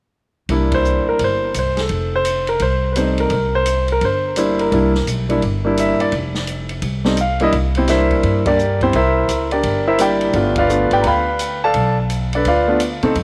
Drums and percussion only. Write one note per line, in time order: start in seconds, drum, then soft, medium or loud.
0.49 kick soft
0.49 ride medium
0.72 kick medium
0.72 ride medium
0.85 hi-hat pedal soft
1.19 kick soft
1.19 ride medium
1.54 hi-hat pedal medium
1.54 ride medium
1.77 snare soft
1.77 ride soft
1.89 kick soft
1.89 ride medium
2.25 hi-hat pedal medium
2.25 ride medium
2.47 ride soft
2.59 kick soft
2.59 ride medium
2.96 hi-hat pedal soft
2.96 ride medium
3.18 ride soft
3.30 kick soft
3.30 ride medium
3.66 hi-hat pedal medium
3.66 ride medium
3.88 ride soft
4.01 kick soft
4.01 ride medium
4.36 hi-hat pedal medium
4.36 ride medium
4.59 ride soft
4.72 kick soft
4.72 ride medium
4.95 snare soft
5.07 hi-hat pedal medium
5.07 ride medium
5.29 ride soft
5.42 kick soft
5.42 ride medium
5.77 hi-hat pedal medium
5.77 ride medium
6.00 ride soft
6.12 kick soft
6.12 ride medium
6.35 snare medium
6.47 hi-hat pedal soft
6.47 ride medium
6.69 ride soft
6.82 kick soft
6.82 ride medium
7.05 snare medium
7.17 hi-hat pedal medium
7.17 ride medium
7.40 ride soft
7.52 kick soft
7.52 ride medium
7.75 ride soft
7.88 snare soft
7.88 hi-hat pedal medium
7.88 ride medium
8.11 kick medium
8.11 ride soft
8.23 kick soft
8.23 ride medium
8.46 kick medium
8.46 ride medium
8.59 hi-hat pedal medium
8.81 kick medium
8.81 ride soft
8.93 kick soft
8.93 ride medium
9.29 hi-hat pedal medium
9.29 ride medium
9.51 ride soft
9.63 kick soft
9.63 ride medium
9.98 hi-hat pedal medium
9.98 ride medium
10.21 ride soft
10.33 kick soft
10.33 ride medium
10.56 kick medium
10.56 ride medium
10.69 hi-hat pedal medium
10.91 ride soft
11.04 kick soft
11.04 ride medium
11.39 hi-hat pedal medium
11.39 ride medium
11.74 kick soft
11.74 ride medium
12.10 hi-hat pedal medium
12.10 ride medium
12.33 ride soft
12.45 kick soft
12.45 ride medium
12.80 hi-hat pedal medium
12.80 ride medium
13.03 ride soft
13.15 kick soft
13.15 ride medium